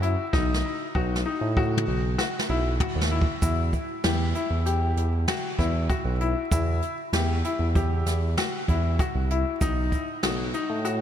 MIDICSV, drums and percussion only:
0, 0, Header, 1, 2, 480
1, 0, Start_track
1, 0, Key_signature, 1, "minor"
1, 0, Tempo, 618557
1, 258, Time_signature, 5, 2, 24, 8
1, 8546, End_track
2, 0, Start_track
2, 0, Title_t, "Drums"
2, 21, Note_on_c, 9, 42, 53
2, 99, Note_off_c, 9, 42, 0
2, 259, Note_on_c, 9, 36, 95
2, 260, Note_on_c, 9, 38, 54
2, 337, Note_off_c, 9, 36, 0
2, 338, Note_off_c, 9, 38, 0
2, 420, Note_on_c, 9, 38, 46
2, 498, Note_off_c, 9, 38, 0
2, 738, Note_on_c, 9, 36, 54
2, 815, Note_off_c, 9, 36, 0
2, 897, Note_on_c, 9, 38, 56
2, 975, Note_off_c, 9, 38, 0
2, 1216, Note_on_c, 9, 36, 83
2, 1294, Note_off_c, 9, 36, 0
2, 1377, Note_on_c, 9, 45, 54
2, 1455, Note_off_c, 9, 45, 0
2, 1696, Note_on_c, 9, 38, 62
2, 1773, Note_off_c, 9, 38, 0
2, 1857, Note_on_c, 9, 38, 77
2, 1934, Note_off_c, 9, 38, 0
2, 2175, Note_on_c, 9, 36, 99
2, 2175, Note_on_c, 9, 43, 81
2, 2253, Note_off_c, 9, 36, 0
2, 2253, Note_off_c, 9, 43, 0
2, 2338, Note_on_c, 9, 38, 67
2, 2416, Note_off_c, 9, 38, 0
2, 2495, Note_on_c, 9, 36, 82
2, 2573, Note_off_c, 9, 36, 0
2, 2655, Note_on_c, 9, 36, 92
2, 2655, Note_on_c, 9, 42, 71
2, 2657, Note_on_c, 9, 82, 45
2, 2732, Note_off_c, 9, 42, 0
2, 2733, Note_off_c, 9, 36, 0
2, 2735, Note_off_c, 9, 82, 0
2, 2895, Note_on_c, 9, 36, 58
2, 2895, Note_on_c, 9, 82, 15
2, 2897, Note_on_c, 9, 42, 44
2, 2972, Note_off_c, 9, 82, 0
2, 2973, Note_off_c, 9, 36, 0
2, 2974, Note_off_c, 9, 42, 0
2, 3134, Note_on_c, 9, 82, 14
2, 3135, Note_on_c, 9, 38, 92
2, 3135, Note_on_c, 9, 42, 65
2, 3211, Note_off_c, 9, 82, 0
2, 3212, Note_off_c, 9, 38, 0
2, 3212, Note_off_c, 9, 42, 0
2, 3376, Note_on_c, 9, 42, 49
2, 3376, Note_on_c, 9, 82, 13
2, 3454, Note_off_c, 9, 42, 0
2, 3454, Note_off_c, 9, 82, 0
2, 3617, Note_on_c, 9, 42, 63
2, 3617, Note_on_c, 9, 82, 14
2, 3694, Note_off_c, 9, 42, 0
2, 3694, Note_off_c, 9, 82, 0
2, 3857, Note_on_c, 9, 42, 51
2, 3935, Note_off_c, 9, 42, 0
2, 4095, Note_on_c, 9, 38, 87
2, 4095, Note_on_c, 9, 42, 62
2, 4096, Note_on_c, 9, 82, 13
2, 4173, Note_off_c, 9, 38, 0
2, 4173, Note_off_c, 9, 42, 0
2, 4174, Note_off_c, 9, 82, 0
2, 4335, Note_on_c, 9, 36, 64
2, 4336, Note_on_c, 9, 38, 27
2, 4336, Note_on_c, 9, 42, 47
2, 4413, Note_off_c, 9, 36, 0
2, 4414, Note_off_c, 9, 38, 0
2, 4414, Note_off_c, 9, 42, 0
2, 4574, Note_on_c, 9, 42, 58
2, 4575, Note_on_c, 9, 36, 78
2, 4576, Note_on_c, 9, 82, 13
2, 4651, Note_off_c, 9, 42, 0
2, 4653, Note_off_c, 9, 36, 0
2, 4654, Note_off_c, 9, 82, 0
2, 4816, Note_on_c, 9, 42, 49
2, 4894, Note_off_c, 9, 42, 0
2, 5055, Note_on_c, 9, 42, 68
2, 5056, Note_on_c, 9, 36, 96
2, 5060, Note_on_c, 9, 82, 43
2, 5132, Note_off_c, 9, 42, 0
2, 5133, Note_off_c, 9, 36, 0
2, 5137, Note_off_c, 9, 82, 0
2, 5295, Note_on_c, 9, 42, 43
2, 5297, Note_on_c, 9, 82, 14
2, 5373, Note_off_c, 9, 42, 0
2, 5375, Note_off_c, 9, 82, 0
2, 5534, Note_on_c, 9, 38, 80
2, 5534, Note_on_c, 9, 42, 64
2, 5539, Note_on_c, 9, 82, 14
2, 5611, Note_off_c, 9, 38, 0
2, 5611, Note_off_c, 9, 42, 0
2, 5616, Note_off_c, 9, 82, 0
2, 5778, Note_on_c, 9, 42, 53
2, 5782, Note_on_c, 9, 82, 14
2, 5855, Note_off_c, 9, 42, 0
2, 5860, Note_off_c, 9, 82, 0
2, 6017, Note_on_c, 9, 36, 90
2, 6017, Note_on_c, 9, 42, 67
2, 6025, Note_on_c, 9, 82, 14
2, 6095, Note_off_c, 9, 36, 0
2, 6095, Note_off_c, 9, 42, 0
2, 6102, Note_off_c, 9, 82, 0
2, 6257, Note_on_c, 9, 38, 33
2, 6257, Note_on_c, 9, 42, 57
2, 6262, Note_on_c, 9, 82, 36
2, 6334, Note_off_c, 9, 38, 0
2, 6334, Note_off_c, 9, 42, 0
2, 6340, Note_off_c, 9, 82, 0
2, 6498, Note_on_c, 9, 38, 80
2, 6498, Note_on_c, 9, 42, 70
2, 6500, Note_on_c, 9, 82, 13
2, 6576, Note_off_c, 9, 38, 0
2, 6576, Note_off_c, 9, 42, 0
2, 6578, Note_off_c, 9, 82, 0
2, 6739, Note_on_c, 9, 36, 62
2, 6740, Note_on_c, 9, 42, 56
2, 6816, Note_off_c, 9, 36, 0
2, 6818, Note_off_c, 9, 42, 0
2, 6977, Note_on_c, 9, 42, 69
2, 6978, Note_on_c, 9, 36, 84
2, 6981, Note_on_c, 9, 82, 14
2, 7055, Note_off_c, 9, 42, 0
2, 7056, Note_off_c, 9, 36, 0
2, 7058, Note_off_c, 9, 82, 0
2, 7219, Note_on_c, 9, 42, 47
2, 7297, Note_off_c, 9, 42, 0
2, 7459, Note_on_c, 9, 36, 86
2, 7459, Note_on_c, 9, 42, 68
2, 7459, Note_on_c, 9, 82, 46
2, 7536, Note_off_c, 9, 36, 0
2, 7537, Note_off_c, 9, 42, 0
2, 7537, Note_off_c, 9, 82, 0
2, 7699, Note_on_c, 9, 36, 58
2, 7699, Note_on_c, 9, 42, 49
2, 7701, Note_on_c, 9, 82, 16
2, 7776, Note_off_c, 9, 36, 0
2, 7777, Note_off_c, 9, 42, 0
2, 7779, Note_off_c, 9, 82, 0
2, 7938, Note_on_c, 9, 38, 87
2, 7938, Note_on_c, 9, 42, 64
2, 7941, Note_on_c, 9, 82, 15
2, 8016, Note_off_c, 9, 38, 0
2, 8016, Note_off_c, 9, 42, 0
2, 8018, Note_off_c, 9, 82, 0
2, 8177, Note_on_c, 9, 42, 47
2, 8180, Note_on_c, 9, 82, 15
2, 8255, Note_off_c, 9, 42, 0
2, 8258, Note_off_c, 9, 82, 0
2, 8418, Note_on_c, 9, 42, 62
2, 8420, Note_on_c, 9, 82, 15
2, 8496, Note_off_c, 9, 42, 0
2, 8497, Note_off_c, 9, 82, 0
2, 8546, End_track
0, 0, End_of_file